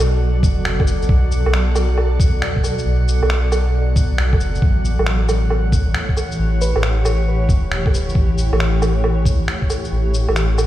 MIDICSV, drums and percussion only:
0, 0, Header, 1, 2, 480
1, 0, Start_track
1, 0, Tempo, 441176
1, 1192, Time_signature, 4, 2, 24, 8
1, 11607, End_track
2, 0, Start_track
2, 0, Title_t, "Drums"
2, 0, Note_on_c, 9, 77, 64
2, 0, Note_on_c, 9, 82, 58
2, 104, Note_off_c, 9, 77, 0
2, 104, Note_off_c, 9, 82, 0
2, 468, Note_on_c, 9, 36, 111
2, 472, Note_on_c, 9, 82, 54
2, 577, Note_off_c, 9, 36, 0
2, 580, Note_off_c, 9, 82, 0
2, 709, Note_on_c, 9, 26, 110
2, 818, Note_off_c, 9, 26, 0
2, 869, Note_on_c, 9, 36, 103
2, 870, Note_on_c, 9, 77, 36
2, 948, Note_on_c, 9, 82, 56
2, 978, Note_off_c, 9, 36, 0
2, 979, Note_off_c, 9, 77, 0
2, 1057, Note_off_c, 9, 82, 0
2, 1110, Note_on_c, 9, 82, 33
2, 1187, Note_on_c, 9, 36, 126
2, 1219, Note_off_c, 9, 82, 0
2, 1296, Note_off_c, 9, 36, 0
2, 1430, Note_on_c, 9, 82, 58
2, 1539, Note_off_c, 9, 82, 0
2, 1591, Note_on_c, 9, 77, 65
2, 1671, Note_on_c, 9, 26, 108
2, 1700, Note_off_c, 9, 77, 0
2, 1779, Note_off_c, 9, 26, 0
2, 1908, Note_on_c, 9, 77, 64
2, 1908, Note_on_c, 9, 82, 57
2, 2017, Note_off_c, 9, 77, 0
2, 2017, Note_off_c, 9, 82, 0
2, 2149, Note_on_c, 9, 77, 64
2, 2258, Note_off_c, 9, 77, 0
2, 2390, Note_on_c, 9, 36, 110
2, 2393, Note_on_c, 9, 82, 56
2, 2499, Note_off_c, 9, 36, 0
2, 2502, Note_off_c, 9, 82, 0
2, 2633, Note_on_c, 9, 26, 108
2, 2742, Note_off_c, 9, 26, 0
2, 2791, Note_on_c, 9, 36, 62
2, 2871, Note_on_c, 9, 77, 35
2, 2871, Note_on_c, 9, 82, 55
2, 2899, Note_off_c, 9, 36, 0
2, 2980, Note_off_c, 9, 77, 0
2, 2980, Note_off_c, 9, 82, 0
2, 3029, Note_on_c, 9, 82, 32
2, 3137, Note_off_c, 9, 82, 0
2, 3352, Note_on_c, 9, 82, 55
2, 3461, Note_off_c, 9, 82, 0
2, 3510, Note_on_c, 9, 77, 63
2, 3589, Note_on_c, 9, 26, 107
2, 3619, Note_off_c, 9, 77, 0
2, 3698, Note_off_c, 9, 26, 0
2, 3829, Note_on_c, 9, 77, 63
2, 3829, Note_on_c, 9, 82, 55
2, 3938, Note_off_c, 9, 77, 0
2, 3938, Note_off_c, 9, 82, 0
2, 4309, Note_on_c, 9, 36, 107
2, 4309, Note_on_c, 9, 82, 53
2, 4417, Note_off_c, 9, 82, 0
2, 4418, Note_off_c, 9, 36, 0
2, 4552, Note_on_c, 9, 26, 105
2, 4661, Note_off_c, 9, 26, 0
2, 4710, Note_on_c, 9, 36, 109
2, 4715, Note_on_c, 9, 77, 33
2, 4790, Note_on_c, 9, 82, 52
2, 4819, Note_off_c, 9, 36, 0
2, 4824, Note_off_c, 9, 77, 0
2, 4898, Note_off_c, 9, 82, 0
2, 4950, Note_on_c, 9, 82, 29
2, 5029, Note_on_c, 9, 36, 116
2, 5059, Note_off_c, 9, 82, 0
2, 5137, Note_off_c, 9, 36, 0
2, 5275, Note_on_c, 9, 82, 54
2, 5384, Note_off_c, 9, 82, 0
2, 5432, Note_on_c, 9, 77, 63
2, 5511, Note_on_c, 9, 26, 102
2, 5541, Note_off_c, 9, 77, 0
2, 5619, Note_off_c, 9, 26, 0
2, 5751, Note_on_c, 9, 77, 63
2, 5751, Note_on_c, 9, 82, 55
2, 5860, Note_off_c, 9, 77, 0
2, 5860, Note_off_c, 9, 82, 0
2, 5988, Note_on_c, 9, 77, 64
2, 6097, Note_off_c, 9, 77, 0
2, 6227, Note_on_c, 9, 36, 105
2, 6228, Note_on_c, 9, 82, 51
2, 6336, Note_off_c, 9, 36, 0
2, 6337, Note_off_c, 9, 82, 0
2, 6468, Note_on_c, 9, 26, 103
2, 6577, Note_off_c, 9, 26, 0
2, 6628, Note_on_c, 9, 36, 60
2, 6711, Note_on_c, 9, 77, 35
2, 6711, Note_on_c, 9, 82, 52
2, 6736, Note_off_c, 9, 36, 0
2, 6820, Note_off_c, 9, 77, 0
2, 6820, Note_off_c, 9, 82, 0
2, 6871, Note_on_c, 9, 82, 30
2, 6980, Note_off_c, 9, 82, 0
2, 7193, Note_on_c, 9, 82, 54
2, 7302, Note_off_c, 9, 82, 0
2, 7351, Note_on_c, 9, 77, 66
2, 7431, Note_on_c, 9, 26, 101
2, 7460, Note_off_c, 9, 77, 0
2, 7540, Note_off_c, 9, 26, 0
2, 7672, Note_on_c, 9, 77, 66
2, 7672, Note_on_c, 9, 82, 53
2, 7780, Note_off_c, 9, 77, 0
2, 7780, Note_off_c, 9, 82, 0
2, 8148, Note_on_c, 9, 36, 100
2, 8153, Note_on_c, 9, 82, 53
2, 8257, Note_off_c, 9, 36, 0
2, 8262, Note_off_c, 9, 82, 0
2, 8394, Note_on_c, 9, 26, 102
2, 8503, Note_off_c, 9, 26, 0
2, 8550, Note_on_c, 9, 36, 104
2, 8559, Note_on_c, 9, 77, 36
2, 8640, Note_on_c, 9, 82, 53
2, 8659, Note_off_c, 9, 36, 0
2, 8668, Note_off_c, 9, 77, 0
2, 8749, Note_off_c, 9, 82, 0
2, 8803, Note_on_c, 9, 82, 30
2, 8870, Note_on_c, 9, 36, 109
2, 8912, Note_off_c, 9, 82, 0
2, 8979, Note_off_c, 9, 36, 0
2, 9117, Note_on_c, 9, 82, 54
2, 9226, Note_off_c, 9, 82, 0
2, 9280, Note_on_c, 9, 77, 69
2, 9359, Note_on_c, 9, 26, 99
2, 9389, Note_off_c, 9, 77, 0
2, 9468, Note_off_c, 9, 26, 0
2, 9596, Note_on_c, 9, 77, 69
2, 9596, Note_on_c, 9, 82, 55
2, 9705, Note_off_c, 9, 77, 0
2, 9705, Note_off_c, 9, 82, 0
2, 9834, Note_on_c, 9, 77, 67
2, 9943, Note_off_c, 9, 77, 0
2, 10069, Note_on_c, 9, 36, 101
2, 10073, Note_on_c, 9, 82, 55
2, 10178, Note_off_c, 9, 36, 0
2, 10182, Note_off_c, 9, 82, 0
2, 10315, Note_on_c, 9, 26, 97
2, 10423, Note_off_c, 9, 26, 0
2, 10470, Note_on_c, 9, 36, 58
2, 10551, Note_on_c, 9, 77, 37
2, 10551, Note_on_c, 9, 82, 54
2, 10578, Note_off_c, 9, 36, 0
2, 10660, Note_off_c, 9, 77, 0
2, 10660, Note_off_c, 9, 82, 0
2, 10711, Note_on_c, 9, 82, 30
2, 10820, Note_off_c, 9, 82, 0
2, 11032, Note_on_c, 9, 82, 58
2, 11141, Note_off_c, 9, 82, 0
2, 11191, Note_on_c, 9, 77, 69
2, 11273, Note_on_c, 9, 26, 103
2, 11273, Note_on_c, 9, 82, 33
2, 11299, Note_off_c, 9, 77, 0
2, 11381, Note_off_c, 9, 26, 0
2, 11381, Note_off_c, 9, 82, 0
2, 11512, Note_on_c, 9, 77, 69
2, 11512, Note_on_c, 9, 82, 58
2, 11607, Note_off_c, 9, 77, 0
2, 11607, Note_off_c, 9, 82, 0
2, 11607, End_track
0, 0, End_of_file